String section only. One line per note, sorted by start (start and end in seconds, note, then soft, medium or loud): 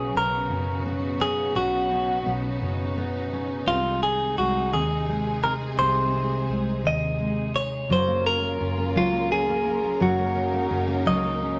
0.00 3.64 C#3 medium
0.00 3.64 F#3 soft
0.00 3.64 B3 medium
0.00 7.87 D#4 medium
0.00 3.64 F#4 medium
3.67 7.86 C3 medium
3.67 7.86 D#3 medium
3.67 7.86 G#3 medium
3.67 7.86 G#4 medium
7.89 11.60 C#3 medium
7.89 11.60 F#3 medium
7.89 11.60 A#3 medium
7.89 9.98 F4 medium
7.89 11.60 A#4 medium
10.02 11.60 D#4 medium